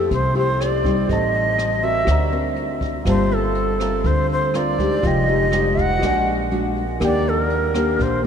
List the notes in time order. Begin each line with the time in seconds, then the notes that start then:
Already playing: A3 E4 F4 G4 A4 E5 A5
0.11 C2 C3 C5, kick, closed hi-hat
0.35 A3 E4 G4 C5, closed hi-hat
0.61 D5, cross-stick, closed hi-hat
0.84 G3 C4 D#4, kick, closed hi-hat
1.07 A1 A2 G4 C5 D#5, kick, closed hi-hat
1.11 D#5 A5
1.34 closed hi-hat
1.58 cross-stick, closed hi-hat
1.83 C4 F#4 A#4 E5, closed hi-hat
2.05 D2 D3 F#4 C5 D5, kick, cross-stick, closed hi-hat
2.11 A#5
2.32 C4 F#4 A#4, closed hi-hat
2.56 closed hi-hat
2.81 kick, closed hi-hat
3.04 G1 G3 A#3 C4 F4 C5, kick, cross-stick, closed hi-hat
3.09 A5
3.31 A4, closed hi-hat
3.55 closed hi-hat
3.80 C4 F4 A#4, cross-stick, closed hi-hat
4.04 D2 D3 C5, kick, closed hi-hat
4.29 C5, closed hi-hat
4.54 C4 F4 A#4 D5, cross-stick, closed hi-hat
4.79 G#3 D#4 G4, kick, closed hi-hat
5.01 F1 F3 F4 D#5, kick, closed hi-hat
5.06 D#5 G5
5.27 G#3 D#4 G4, closed hi-hat
5.52 G#3 D#4 G4, cross-stick, closed hi-hat
5.77 F#5, kick, closed hi-hat
5.99 A#1 A#2 G#3 D4 F#4 A#4, kick, cross-stick, closed hi-hat
6.03 D5 G#5
6.27 closed hi-hat
6.51 G#3 D4 F#4, closed hi-hat
6.76 closed hi-hat
7.00 D#2 D#3 A#3 D4 G4 A#4 D5, kick, cross-stick, closed hi-hat
7.04 D5 G5
7.26 A4, closed hi-hat
7.40 A#4
7.50 closed hi-hat
7.74 A#3 D4 G4, cross-stick, closed hi-hat
7.99 A#1 A#2 C5, kick, closed hi-hat